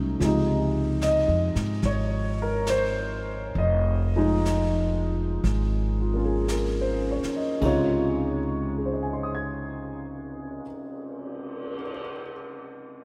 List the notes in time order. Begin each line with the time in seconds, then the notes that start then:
Already playing: C2 F#3 A3 C#4 D#4
0.20 C#2 C3 F3 G#3, brush sweep, snare
0.25 D#4
1.01 D#5, snare, hi-hat pedal
1.28 F2
1.55 G#2, snare
1.82 G#1 C#5, brush sweep, snare
2.42 A#4
2.67 C5, snare, hi-hat pedal
3.53 F1, brush sweep
3.58 D#5
4.16 F3 G#3 D#4
4.45 snare, hi-hat pedal
5.44 G#1, brush sweep, snare
6.01 F4
6.14 A#3 C#4 F4
6.25 G#4
6.48 A#4, snare, hi-hat pedal
6.81 C5
7.11 C#5
7.23 muted upright bass stroke, snare
7.36 D#5
7.61 C#2 C3 C#3 G#3 D#4 F4, kick, crash
7.65 C#5
8.40 cymbal swell
8.78 G#4
8.86 C5
8.93 D#5
9.03 G#5
9.13 C6
9.23 D#6
9.35 G#6